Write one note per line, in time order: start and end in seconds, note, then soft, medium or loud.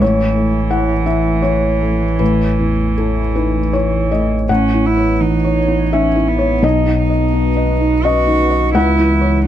0.00 2.16 A1 medium
0.00 4.49 A1 medium
0.00 4.45 E3 medium
0.00 4.24 E3 medium
0.00 4.49 A3 medium
0.00 4.47 C#5 medium
0.00 0.67 C#5 medium
0.35 0.92 A3 soft
0.71 1.05 E4 soft
0.71 1.04 F#5 medium
1.06 1.42 E4 soft
1.06 1.41 E5 soft
1.42 2.04 E4 soft
1.42 2.15 C#5 medium
1.81 2.44 A3 soft
2.19 4.45 A1 soft
2.19 2.94 B4 medium
2.59 3.21 E2 soft
2.98 3.59 E4 soft
2.98 3.33 A4 soft
3.35 3.74 D#4 soft
3.35 3.71 B4 medium
3.73 4.34 E4 soft
3.73 4.09 C#5 medium
4.12 4.49 A3 soft
4.12 4.46 D#5 medium
4.48 6.59 A1 medium
4.48 6.66 A1 medium
4.48 6.59 E3 medium
4.48 8.70 B3 medium
4.48 4.87 C#4 medium
4.48 6.59 C#5 medium
4.48 5.89 F#5 medium
4.74 5.12 E4 soft
4.86 5.23 E4 medium
4.97 5.36 C#5 soft
5.21 5.59 E3 soft
5.21 5.95 D#4 medium
5.45 5.83 C#5 soft
5.68 6.06 E4 soft
5.92 6.29 C#4 medium
5.92 6.16 D#4 soft
5.92 6.60 E5 medium
6.15 6.54 E4 soft
6.28 6.65 B3 medium
6.39 6.63 C#5 soft
6.62 8.70 B1 medium
6.62 8.77 B1 medium
6.62 6.98 D#4 medium
6.62 8.76 F#4 medium
6.62 8.75 B4 medium
6.62 7.08 D#5 medium
6.86 7.24 D#4 soft
6.98 8.05 D#4 medium
7.10 7.48 D#5 soft
7.33 7.71 D#4 soft
7.57 7.94 D#5 soft
7.80 8.18 D#4 soft
8.04 8.28 C#4 soft
8.04 8.75 F#4 medium
8.04 8.49 D#5 medium
8.27 8.65 D#4 soft
8.51 8.75 D#5 medium
8.74 9.47 C#2 medium
8.74 9.47 E3 medium
8.74 9.47 G#3 medium
8.74 9.44 E4 medium
8.74 9.47 C#5 medium
8.74 9.47 F#5 medium
8.98 9.36 E4 medium
9.21 9.47 C#5 soft